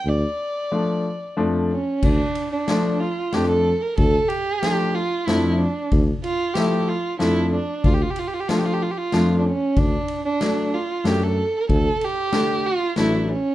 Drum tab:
CC |------|x-----|------|------|
RD |------|-xx-x-|xxx-x-|xxx-x-|
SD |------|--o-o-|--o-o-|--o-o-|
BD |------|o-----|o-----|o-----|

CC |------|------|------|
RD |xxx-x-|xxx-x-|xxx-x-|
SD |--o-o-|--o-o-|--o-o-|
BD |o-----|o-----|o-----|